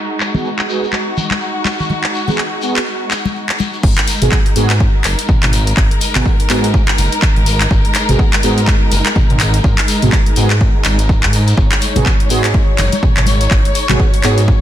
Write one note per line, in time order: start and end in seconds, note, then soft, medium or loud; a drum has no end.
0.00 3.79 G#3 medium
0.00 3.80 D#4 medium
0.00 3.82 F#4 medium
0.20 clap medium
0.20 shekere medium
0.34 0.49 B3 medium
0.34 0.49 F#4 medium
0.34 0.49 G#4 medium
0.34 high conga medium
0.34 low conga loud
0.34 shekere soft
0.45 shekere soft
0.59 clap medium
0.69 0.86 B3 medium
0.69 0.86 F#4 medium
0.69 0.86 G#4 loud
0.69 shekere medium
0.84 shekere soft
0.92 clap medium
0.92 high conga soft
0.92 shekere soft
1.17 low conga medium
1.17 shekere medium
1.31 clap medium
1.31 high conga medium
1.41 shekere soft
1.65 clap medium
1.65 high conga medium
1.65 shekere medium
1.79 low conga medium
1.79 shekere soft
1.89 high conga medium
1.89 low conga medium
1.89 shekere soft
2.04 clap medium
2.14 shekere medium
2.28 2.42 B3 medium
2.28 2.42 F#4 medium
2.28 2.42 G#4 medium
2.28 high conga medium
2.28 low conga loud
2.28 shekere soft
2.38 clap medium
2.62 2.80 B3 medium
2.62 2.80 F#4 medium
2.62 2.80 G#4 loud
2.62 shekere medium
2.76 clap medium
2.76 shekere soft
2.86 shekere soft
3.11 clap medium
3.11 shekere medium
3.25 high conga medium
3.25 shekere soft
3.35 shekere soft
3.49 clap medium
3.59 high conga medium
3.59 shekere medium
3.73 shekere soft
3.83 3.94 G#1 loud
3.83 14.61 G#3 medium
3.83 14.61 D#4 medium
3.83 11.56 A#4 medium
3.83 kick loud
3.83 crash loud
3.83 shekere soft
3.98 clap loud
3.98 closed hi-hat soft
4.07 open hi-hat medium
4.07 shekere medium
4.21 4.29 G#1 medium
4.21 4.36 B3 medium
4.21 4.36 F#4 medium
4.21 4.36 G#4 loud
4.21 closed hi-hat medium
4.21 mid tom medium
4.21 shekere medium
4.32 kick loud
4.32 clap medium
4.32 shekere soft
4.46 closed hi-hat soft
4.56 4.88 G#2 medium
4.56 4.73 B3 loud
4.56 4.73 F#4 medium
4.56 4.73 G#4 loud
4.56 open hi-hat loud
4.56 shekere medium
4.70 clap medium
4.70 closed hi-hat medium
4.70 shekere medium
4.80 kick loud
4.80 shekere soft
5.04 5.15 F#1 medium
5.04 clap medium
5.04 open hi-hat medium
5.04 shekere medium
5.19 closed hi-hat medium
5.19 shekere medium
5.28 kick loud
5.28 mid tom medium
5.28 shekere soft
5.43 5.73 G#1 loud
5.43 clap medium
5.43 closed hi-hat soft
5.43 mid tom medium
5.53 open hi-hat loud
5.53 shekere loud
5.67 closed hi-hat medium
5.67 shekere soft
5.77 5.88 G#1 loud
5.77 kick loud
5.77 clap medium
5.91 closed hi-hat soft
6.01 open hi-hat medium
6.01 shekere medium
6.15 6.23 G#1 medium
6.15 6.30 B3 medium
6.15 6.30 F#4 medium
6.15 6.30 G#4 loud
6.15 clap loud
6.15 closed hi-hat medium
6.15 mid tom medium
6.15 shekere medium
6.25 kick loud
6.25 shekere soft
6.40 closed hi-hat soft
6.49 6.82 G#2 medium
6.49 6.67 B3 medium
6.49 6.67 F#4 medium
6.49 6.67 G#4 loud
6.49 clap medium
6.49 open hi-hat loud
6.49 shekere loud
6.64 closed hi-hat medium
6.64 shekere medium
6.74 kick loud
6.74 shekere soft
6.88 clap loud
6.98 7.09 F#1 medium
6.98 open hi-hat loud
6.98 shekere loud
7.12 closed hi-hat medium
7.12 shekere medium
7.22 kick loud
7.22 clap medium
7.36 7.67 G#1 loud
7.36 closed hi-hat soft
7.46 open hi-hat loud
7.46 shekere loud
7.61 clap medium
7.61 closed hi-hat medium
7.70 7.81 G#1 loud
7.70 kick loud
7.70 shekere soft
7.85 closed hi-hat soft
7.95 clap medium
7.95 open hi-hat medium
7.95 shekere medium
8.09 8.16 G#1 medium
8.09 8.23 B3 medium
8.09 8.23 F#4 medium
8.09 8.23 G#4 loud
8.09 closed hi-hat medium
8.09 mid tom medium
8.09 shekere medium
8.19 kick loud
8.19 shekere soft
8.33 clap loud
8.33 closed hi-hat soft
8.43 8.76 G#2 medium
8.43 8.61 B3 loud
8.43 8.61 F#4 medium
8.43 8.61 G#4 loud
8.43 open hi-hat loud
8.43 shekere loud
8.57 closed hi-hat medium
8.57 shekere medium
8.67 kick loud
8.67 clap medium
8.67 shekere soft
8.92 9.02 F#1 medium
8.92 open hi-hat medium
8.92 shekere medium
9.06 clap loud
9.06 closed hi-hat medium
9.06 shekere medium
9.16 kick loud
9.16 mid tom medium
9.16 shekere soft
9.30 9.60 G#1 loud
9.30 closed hi-hat soft
9.30 mid tom medium
9.40 clap medium
9.40 open hi-hat medium
9.40 shekere loud
9.54 closed hi-hat medium
9.54 shekere medium
9.64 9.75 G#1 loud
9.64 kick loud
9.64 shekere soft
9.78 clap loud
9.78 closed hi-hat soft
9.88 open hi-hat medium
9.88 shekere loud
10.02 10.10 G#1 medium
10.02 10.17 B3 medium
10.02 10.17 F#4 medium
10.02 10.17 G#4 loud
10.02 closed hi-hat medium
10.02 mid tom medium
10.02 shekere medium
10.12 kick loud
10.12 clap medium
10.12 shekere soft
10.26 closed hi-hat soft
10.36 10.69 G#2 medium
10.36 10.54 B3 medium
10.36 10.54 F#4 medium
10.36 10.54 G#4 loud
10.36 open hi-hat medium
10.36 shekere loud
10.50 clap loud
10.50 closed hi-hat medium
10.50 shekere soft
10.61 kick loud
10.61 shekere soft
10.84 11.25 G#1 medium
10.84 clap medium
10.84 open hi-hat medium
10.84 shekere medium
10.99 closed hi-hat medium
10.99 shekere medium
11.09 kick loud
11.09 shekere soft
11.23 11.54 G#2 medium
11.23 clap loud
11.23 closed hi-hat soft
11.33 open hi-hat medium
11.33 shekere loud
11.47 closed hi-hat medium
11.47 shekere medium
11.57 11.68 G#1 loud
11.57 14.61 C#5 medium
11.57 kick loud
11.57 shekere soft
11.72 clap loud
11.72 closed hi-hat soft
11.81 open hi-hat medium
11.81 shekere medium
11.96 12.03 G#1 medium
11.96 12.10 B3 medium
11.96 12.10 F#4 medium
11.96 12.10 G#4 loud
11.96 closed hi-hat medium
11.96 mid tom loud
11.96 high conga medium
11.96 low conga loud
11.96 shekere medium
12.06 kick loud
12.06 clap medium
12.06 shekere soft
12.20 closed hi-hat soft
12.30 12.63 G#2 medium
12.30 12.47 B3 loud
12.30 12.47 F#4 medium
12.30 12.47 G#4 loud
12.30 open hi-hat medium
12.30 shekere loud
12.44 clap medium
12.44 closed hi-hat medium
12.54 kick loud
12.54 high conga medium
12.54 shekere soft
12.78 12.89 F#1 medium
12.78 clap medium
12.78 open hi-hat medium
12.78 low conga medium
12.78 shekere medium
12.92 closed hi-hat medium
12.92 high conga loud
12.92 shekere medium
13.03 kick loud
13.03 mid tom medium
13.17 13.47 G#1 loud
13.17 clap medium
13.17 closed hi-hat soft
13.17 mid tom medium
13.26 open hi-hat medium
13.26 high conga medium
13.26 shekere medium
13.41 closed hi-hat medium
13.41 shekere medium
13.51 13.62 G#1 loud
13.51 kick loud
13.51 clap medium
13.65 closed hi-hat soft
13.75 open hi-hat medium
13.75 shekere medium
13.89 13.97 G#1 medium
13.89 14.04 B3 medium
13.89 14.04 F#4 medium
13.89 14.04 G#4 loud
13.89 clap medium
13.89 closed hi-hat medium
13.89 mid tom loud
13.89 high conga medium
13.89 low conga medium
13.89 shekere medium
14.00 kick loud
14.00 shekere soft
14.14 closed hi-hat soft
14.24 14.56 G#2 medium
14.24 14.41 B3 loud
14.24 14.41 F#4 medium
14.24 14.41 G#4 loud
14.24 clap medium
14.24 open hi-hat medium
14.24 shekere loud
14.37 closed hi-hat medium
14.37 shekere medium
14.48 kick loud
14.48 low conga loud
14.48 shekere soft